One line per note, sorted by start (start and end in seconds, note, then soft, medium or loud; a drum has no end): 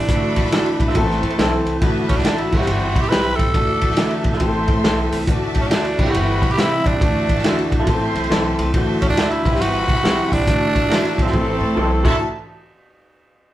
0.00 2.49 E3 medium
0.00 0.81 D4 medium
0.07 0.33 D2 loud
0.07 0.44 E3 medium
0.07 0.78 A3 medium
0.07 0.44 A3 medium
0.07 0.45 D4 medium
0.07 0.78 E4 medium
0.07 0.17 E4 medium
0.07 0.78 F#4 medium
0.07 0.94 F#4 medium
0.07 0.78 A4 medium
0.07 0.94 E5 medium
0.07 0.93 B5 medium
0.07 kick loud
0.07 hi-hat pedal medium
0.07 ride medium
0.12 0.96 F#4 medium
0.12 0.48 F#4 medium
0.36 kick medium
0.36 ride medium
0.43 0.75 D2 medium
0.43 snare soft
0.52 0.87 E3 medium
0.52 0.88 A3 medium
0.52 0.88 D4 medium
0.52 0.88 E4 loud
0.52 0.65 F#4 medium
0.52 0.65 A4 medium
0.52 0.65 E5 medium
0.52 snare loud
0.52 ride loud
0.66 ride soft
0.79 0.93 C2 medium
0.79 kick loud
0.79 ride medium
0.88 0.94 F#4 medium
0.88 0.94 A4 medium
0.88 0.93 E5 medium
0.88 snare soft
0.94 1.20 A1 loud
0.94 1.31 E3 medium
0.94 1.65 A3 medium
0.94 1.31 A3 medium
0.94 1.65 C4 medium
0.94 1.31 C4 medium
0.94 1.82 C4 medium
0.94 1.79 E4 medium
0.94 1.65 E4 medium
0.94 1.65 A4 loud
0.94 1.31 A4 loud
0.94 1.82 A4 medium
0.94 1.80 C5 medium
0.94 1.80 A5 medium
0.94 kick loud
0.94 ride medium
1.10 snare soft
1.23 1.37 A2 loud
1.23 ride medium
1.30 ride soft
1.38 1.63 B1 loud
1.38 1.74 E3 medium
1.38 1.74 A3 medium
1.38 1.74 C4 medium
1.38 1.51 A4 medium
1.38 1.74 A4 loud
1.38 1.51 C5 loud
1.38 1.52 E5 loud
1.38 snare loud
1.38 ride medium
1.65 1.79 C2 medium
1.65 ride medium
1.81 2.06 D2 loud
1.81 2.17 E3 medium
1.81 2.18 A3 medium
1.81 2.24 B3 medium
1.81 2.18 D4 medium
1.81 2.53 D4 medium
1.81 2.25 E4 medium
1.81 2.51 F#4 medium
1.81 2.24 F#4 medium
1.81 2.53 F#4 medium
1.81 2.18 F#4 medium
1.81 2.24 B4 medium
1.81 2.51 E5 medium
1.81 2.51 A5 medium
1.81 kick loud
1.81 ride medium
2.08 2.19 C#4 medium
2.08 kick loud
2.08 ride medium
2.16 2.23 D2 medium
2.16 2.39 D4 medium
2.16 snare soft
2.24 2.49 A1 medium
2.24 2.50 E3 medium
2.24 2.53 A3 medium
2.24 2.53 D4 medium
2.24 2.37 F#4 medium
2.24 2.53 F#4 medium
2.24 2.38 A4 medium
2.24 2.38 E5 loud
2.24 snare loud
2.24 ride medium
2.38 2.58 E4 medium
2.38 ride soft
2.52 2.66 C2 loud
2.52 3.02 E3 medium
2.52 6.97 E3 medium
2.52 3.02 G3 medium
2.52 3.54 G3 medium
2.52 3.38 G3 medium
2.52 3.54 C4 medium
2.52 3.03 C4 medium
2.52 3.38 C4 medium
2.52 3.52 E4 medium
2.52 3.38 E4 medium
2.52 3.54 E4 medium
2.52 3.03 E4 loud
2.52 3.38 C5 medium
2.52 3.52 E5 medium
2.52 3.52 B5 medium
2.52 kick loud
2.52 crash medium
2.57 3.02 F#4 medium
2.57 2.66 G4 medium
2.57 2.66 C5 medium
2.57 2.65 E5 medium
2.61 snare soft
2.67 2.92 G1 loud
2.67 ride medium
2.95 3.09 C3 loud
2.95 kick loud
2.95 ride medium
3.01 3.10 G4 loud
3.01 ride soft
3.09 3.35 B1 loud
3.09 3.47 E3 medium
3.09 3.47 G3 medium
3.09 3.47 C4 medium
3.09 3.24 G4 medium
3.09 3.37 B4 loud
3.09 3.24 C5 medium
3.09 3.24 E5 medium
3.09 snare loud
3.09 ride medium
3.13 3.48 G4 medium
3.36 3.53 C2 medium
3.36 4.24 A4 loud
3.36 kick medium
3.36 ride medium
3.54 3.79 D2 loud
3.54 3.90 E3 medium
3.54 5.96 A3 medium
3.54 3.90 A3 medium
3.54 4.24 D4 medium
3.54 3.90 D4 medium
3.54 4.40 F#4 medium
3.54 4.39 F#4 medium
3.54 4.24 F#4 medium
3.54 3.91 F#4 medium
3.54 4.24 A4 medium
3.54 4.24 D5 medium
3.54 4.39 E5 medium
3.54 4.39 A5 medium
3.54 kick loud
3.54 ride medium
3.81 kick medium
3.81 ride medium
3.90 4.21 D2 loud
3.90 snare soft
3.97 4.33 E3 medium
3.97 4.33 A3 medium
3.97 4.34 D4 medium
3.97 4.05 D#4 medium
3.97 4.10 F#4 medium
3.97 4.11 A4 medium
3.97 4.11 E5 medium
3.97 snare loud
3.97 ride medium
4.04 4.36 E4 loud
4.11 ride soft
4.24 4.39 C2 medium
4.24 kick loud
4.24 ride medium
4.33 4.39 F#4 medium
4.33 4.39 A4 medium
4.33 4.39 E5 medium
4.33 snare soft
4.40 4.65 A1 loud
4.40 4.76 E3 medium
4.40 4.76 A3 medium
4.40 5.27 C4 medium
4.40 5.11 C4 medium
4.40 4.77 C4 medium
4.40 5.10 E4 medium
4.40 4.48 G4 medium
4.40 5.11 A4 medium
4.40 5.26 A4 medium
4.40 5.27 A4 medium
4.40 5.11 C5 medium
4.40 5.26 E5 medium
4.40 5.26 C6 medium
4.40 kick loud
4.40 ride medium
4.48 4.80 A4 loud
4.68 4.82 A2 loud
4.68 kick loud
4.68 ride medium
4.84 5.09 B1 medium
4.84 5.20 E3 medium
4.84 5.20 A3 medium
4.84 5.20 C4 medium
4.84 4.97 A4 medium
4.84 5.21 A4 loud
4.84 4.97 C5 medium
4.84 4.97 E5 loud
4.84 snare loud
4.84 ride medium
5.12 5.27 C2 medium
5.12 open hi-hat medium
5.12 ride medium
5.27 5.52 D2 loud
5.27 5.63 E3 medium
5.27 5.63 A3 medium
5.27 5.98 D4 medium
5.27 5.63 D4 medium
5.27 5.71 D4 medium
5.27 5.98 F#4 medium
5.27 5.97 F#4 medium
5.27 5.70 F#4 medium
5.27 5.63 F#4 loud
5.27 5.70 A4 medium
5.27 5.71 D5 medium
5.27 5.97 E5 medium
5.27 5.98 A5 loud
5.27 kick loud
5.27 hi-hat pedal medium
5.27 ride medium
5.55 kick loud
5.55 ride medium
5.61 5.94 D2 medium
5.61 5.69 C#4 medium
5.67 5.98 E3 medium
5.67 5.99 A3 medium
5.67 6.12 D4 loud
5.67 5.83 F#4 medium
5.67 ride loud
5.71 5.99 D4 medium
5.71 5.99 F#4 medium
5.71 5.84 A4 loud
5.71 5.84 E5 loud
5.71 snare loud
5.85 ride soft
5.98 6.17 C2 loud
5.98 6.49 E3 medium
5.98 6.84 G3 medium
5.98 6.49 G3 medium
5.98 7.00 G3 medium
5.98 6.84 B3 medium
5.98 7.00 C4 medium
5.98 6.49 C4 medium
5.98 6.99 E4 medium
5.98 7.00 E4 medium
5.98 6.84 E4 medium
5.98 6.49 E4 medium
5.98 6.84 B4 medium
5.98 6.98 E5 medium
5.98 6.99 B5 medium
5.98 kick loud
5.98 crash medium
6.06 6.53 F#4 medium
6.06 6.13 G4 medium
6.06 6.12 C5 medium
6.06 6.12 E5 medium
6.14 6.39 G1 loud
6.14 ride medium
6.42 6.80 C3 loud
6.42 kick loud
6.42 ride medium
6.51 6.62 G4 loud
6.51 ride soft
6.58 6.94 E3 medium
6.58 6.94 G3 medium
6.58 6.94 C4 medium
6.58 6.88 E4 loud
6.58 6.70 G4 medium
6.58 6.94 G4 medium
6.58 6.70 C5 medium
6.58 6.71 E5 loud
6.58 snare loud
6.58 ride medium
6.86 6.99 C2 loud
6.86 7.72 D4 medium
6.86 kick loud
6.86 ride medium
6.99 7.25 D2 loud
6.99 12.00 E3 medium
6.99 7.36 E3 medium
6.99 8.71 A3 medium
6.99 7.70 A3 medium
6.99 7.37 A3 medium
6.99 7.86 D4 medium
6.99 7.37 D4 medium
6.99 7.70 E4 medium
6.99 7.86 F#4 medium
6.99 7.85 F#4 medium
6.99 7.70 F#4 medium
6.99 7.70 A4 medium
6.99 7.85 E5 medium
6.99 7.85 A5 loud
6.99 kick loud
6.99 ride medium
7.03 7.37 F#4 medium
7.29 kick loud
7.29 ride medium
7.36 7.67 D2 loud
7.36 snare soft
7.44 7.79 E3 loud
7.44 7.80 A3 medium
7.44 7.80 D4 medium
7.44 7.56 F#4 medium
7.44 7.81 F#4 loud
7.44 7.57 A4 loud
7.44 7.57 E5 loud
7.44 snare loud
7.44 ride loud
7.59 ride soft
7.72 7.86 B1 loud
7.72 kick loud
7.72 ride medium
7.80 7.86 F#4 medium
7.80 7.85 A4 medium
7.80 7.85 E5 medium
7.86 8.11 A1 loud
7.86 8.22 E3 medium
7.86 8.23 A3 medium
7.86 7.94 B3 medium
7.86 8.72 C4 medium
7.86 8.58 C4 medium
7.86 8.58 E4 medium
7.86 8.72 A4 medium
7.86 8.57 A4 medium
7.86 8.23 A4 loud
7.86 8.58 C5 loud
7.86 8.72 E5 medium
7.86 8.72 C6 medium
7.86 kick loud
7.86 ride medium
7.93 8.26 C4 medium
8.15 8.29 B1 loud
8.15 ride medium
8.24 ride soft
8.30 8.55 B1 loud
8.30 8.66 E3 loud
8.30 8.66 A3 medium
8.30 8.67 C4 medium
8.30 8.43 A4 medium
8.30 8.67 A4 medium
8.30 8.44 C5 medium
8.30 8.44 E5 medium
8.30 snare loud
8.30 ride medium
8.59 8.72 C2 loud
8.59 ride medium
8.72 8.98 D2 loud
8.72 9.10 E3 medium
8.72 9.43 A3 medium
8.72 9.10 A3 medium
8.72 9.17 C4 medium
8.72 9.43 D4 medium
8.72 9.43 F#4 medium
8.72 9.17 F#4 medium
8.72 9.17 A4 medium
8.72 9.17 C5 medium
8.72 9.43 E5 medium
8.72 9.43 A5 medium
8.72 kick loud
8.72 ride medium
8.76 9.10 D4 medium
8.76 9.11 F#4 loud
9.02 9.09 C#4 loud
9.02 kick medium
9.02 ride medium
9.09 9.41 D2 medium
9.09 9.32 D4 loud
9.09 snare soft
9.17 9.44 E3 medium
9.17 9.45 A3 medium
9.17 9.46 D4 medium
9.17 9.30 F#4 medium
9.17 9.46 F#4 medium
9.17 9.30 A4 medium
9.17 9.30 E5 loud
9.17 snare loud
9.17 ride medium
9.31 9.62 E4 loud
9.31 ride soft
9.45 9.59 C2 loud
9.45 9.95 E3 medium
9.45 10.30 G3 medium
9.45 10.46 G3 medium
9.45 9.95 G3 medium
9.45 10.30 B3 medium
9.45 10.46 C4 medium
9.45 9.95 C4 medium
9.45 10.46 E4 medium
9.45 10.45 E4 medium
9.45 10.30 E4 medium
9.45 9.95 E4 medium
9.45 10.30 B4 loud
9.45 10.45 E5 medium
9.45 10.45 B5 medium
9.45 kick loud
9.45 ride medium
9.52 9.58 G4 medium
9.52 9.58 C5 medium
9.52 9.58 E5 medium
9.52 snare soft
9.60 9.85 G1 loud
9.60 10.34 F#4 loud
9.60 ride medium
9.88 10.02 C3 loud
9.88 kick loud
9.88 ride medium
9.97 ride soft
10.04 10.28 B1 medium
10.04 10.39 E3 medium
10.04 10.40 G3 medium
10.04 10.40 C4 medium
10.04 10.16 G4 medium
10.04 10.40 G4 medium
10.04 10.16 C5 medium
10.04 10.17 E5 loud
10.04 snare loud
10.04 ride medium
10.32 10.45 C2 medium
10.32 11.23 D4 loud
10.32 kick medium
10.32 open hi-hat medium
10.32 ride medium
10.47 10.72 D2 loud
10.47 10.82 E3 medium
10.47 10.83 A3 medium
10.47 11.17 A3 medium
10.47 12.04 A3 medium
10.47 11.33 D4 medium
10.47 10.83 D4 medium
10.47 11.17 E4 medium
10.47 11.32 F#4 medium
10.47 11.17 F#4 medium
10.47 10.83 F#4 medium
10.47 11.17 A4 medium
10.47 11.32 E5 medium
10.47 11.32 A5 medium
10.47 kick loud
10.47 hi-hat pedal medium
10.47 ride medium
10.75 kick medium
10.75 ride medium
10.82 10.89 D2 medium
10.89 11.26 E3 medium
10.89 11.26 A3 medium
10.89 11.26 D4 medium
10.89 11.02 F#4 medium
10.89 11.27 F#4 medium
10.89 11.03 A4 medium
10.89 11.03 E5 loud
10.89 snare loud
10.89 ride medium
11.04 muted upright bass stroke soft
11.04 ride soft
11.18 11.32 B1 loud
11.18 12.05 C4 medium
11.18 kick medium
11.18 ride medium
11.25 11.32 F#4 medium
11.25 11.31 A4 medium
11.25 11.31 E5 medium
11.25 snare soft
11.33 11.58 A1 loud
11.33 11.69 E3 medium
11.33 11.69 A3 medium
11.33 12.04 A3 medium
11.33 11.69 C4 medium
11.33 12.04 C4 medium
11.33 12.04 E4 medium
11.33 11.41 G4 medium
11.33 12.04 A4 loud
11.33 12.05 A4 medium
11.33 12.04 C5 medium
11.33 12.04 A5 medium
11.33 kick medium
11.40 11.72 A4 medium
11.61 11.75 A2 loud
11.76 12.01 B1 loud
11.76 12.03 E3 medium
11.76 12.05 A3 medium
11.76 11.84 B3 medium
11.76 11.89 E4 medium
11.76 11.89 A4 medium
11.76 12.05 A4 loud
11.76 11.90 C5 loud
11.83 12.08 C4 medium
12.04 12.19 D2 medium
12.04 12.19 E3 medium
12.04 12.16 F#3 loud
12.04 12.16 A3 loud
12.04 12.20 A3 medium
12.04 12.19 D4 medium
12.04 12.16 E4 medium
12.04 12.14 F#4 medium
12.04 12.19 F#4 medium
12.04 12.20 F#4 medium
12.04 12.14 A4 medium
12.04 12.16 A4 loud
12.04 12.19 E5 medium
12.04 12.14 E5 medium
12.04 12.19 A5 loud
12.04 kick loud
12.04 crash medium